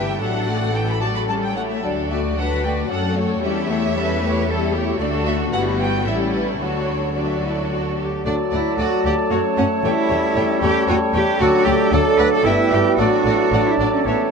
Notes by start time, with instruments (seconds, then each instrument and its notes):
Already playing: double bass section G1, viola section E3 G3, violin section G4 E5 G5, cello section B4
0.20 double bass section A1, viola section F#3 D4, cello section A4, violin section A4 F#5
0.46 viola section A3 F#4, violin section F#4 D5
0.74 viola section E3, violin section A4 G5
0.89 violin section B5
1.00 viola section F#3, violin section F#4 D5 A5
1.15 violin section B5
1.28 viola section G3, violin section C#4 A4 A5
1.43 violin section G5
1.55 viola section A3, violin section E4 C#5 F#5
1.70 violin section E5
1.83 double bass section D2, viola section F#3 D4, violin section A4 D5
2.09 viola section A3 F#4, violin section F#4 D5 E5
2.36 viola section F#3 D4, violin section A4 F#5, cello section B4
2.63 viola section A3 F#4, violin section F#4 D5 G5
2.89 double bass section F#2, viola section F#3 C#4, cello section A4, violin section A4 F#5
3.16 viola section A3, violin section F#4 C#5
3.43 double bass section E2, viola section G3 C#4, violin section E4 A4 E5, cello section G4
3.69 viola section A3 E4, violin section G4 C#5, cello section A4
3.95 viola section G3 C#4, violin section E4 A4, cello section B4
4.21 viola section A3 E4, violin section G4 C#5
4.47 viola section G3 C#4, violin section E4 A4, cello section A4
4.73 viola section A3 E4, cello section G4, violin section G4 C#5
4.99 double bass section D2, viola section A3 D4, cello section F#4, violin section F#4 A4 D5
5.27 violin section E5
5.52 double bass section G1, viola section G3 B3, violin section E4 B4 F#5
5.79 violin section G5
6.05 double bass section A1, viola section G3 C#4, cello section E4, violin section E4 A4 E5
6.34 violin section B4
6.49 violin section C#5
6.60 double bass section D2, viola section F#3 D4, cello section F#4, violin section F#4 A4 C#5
7.15 viola section F#3 D4, cello section D4, violin section F#4 A4 D5
7.24 violin section E5
7.32 violin section D5
7.43 cello section E4
7.70 cello section F#4
7.98 cello section G4
8.25 double bass section D2, bassoon F#3, french horn section A3 F#4, viola section A3, cello section D4, clarinet A4, oboe D5, violin section D5 F#5, flute A5
8.52 double bass section D2, viola section A3, cello section E4, violin section D5 F#5
8.78 double bass section D2, viola section A3, cello section F#4, violin section D5 F#5
9.04 double bass section D2, viola section A3, cello section G4, violin section D5 F#5
9.31 double bass section F#2, viola section A3, french horn section C#4, cello section F#4, violin section C#5 F#5, oboe C#5
9.57 double bass section F#2, viola section A3, cello section C#4, violin section C#5 F#5
9.83 double bass section E2, bassoon G3, viola section A3, cello section E4, violin section C#5 G5
10.09 double bass section E2, viola section A3, violin section C#5 G5
10.36 double bass section E2, viola section A3, violin section C#5 G5
10.62 double bass section E2, viola section A3, cello section G4, violin section C#5 G5
10.88 double bass section E2, viola section A3, cello section F#4, violin section C#5 G5
11.13 double bass section E2, viola section A3, cello section G4, violin section C#5 G5
11.40 double bass section D2, bassoon F#3, french horn section A3 D4, viola section A3, cello section F#4, clarinet A4, violin section D5 F#5, oboe D5, flute A5
11.65 double bass section D2, viola section A3, cello section G4, violin section D5 F#5
11.91 double bass section D2, bassoon F#3, viola section A3, cello section A4, clarinet A4, oboe D5, violin section D5 F#5, flute A5
12.18 double bass section D2, viola section A3, cello section B4, violin section D5 F#5
12.33 cello section A4
12.44 double bass section G1, bassoon G3, french horn section B3 E4, viola section B3, cello section E4, clarinet B4, oboe E5, violin section E5 G5, flute G5
12.71 double bass section G1, viola section B3, cello section G4, violin section E5 G5
12.98 double bass section A1, bassoon F#3, french horn section A3 D4, viola section A3, cello section F#4, clarinet A4, oboe D5, violin section D5 F#5, flute A5
13.25 double bass section A1, viola section A3, violin section D5 F#5
13.52 double bass section A1, viola section A3, violin section D5 F#5
13.67 cello section E4
13.79 double bass section A1, viola section A3, cello section D4, violin section D5 F#5
13.93 cello section C#4
14.05 double bass section A1, bassoon E3, viola section A3, cello section B3, french horn section C#4, clarinet A4, oboe C#5, violin section C#5 E5, flute A5
14.20 cello section A3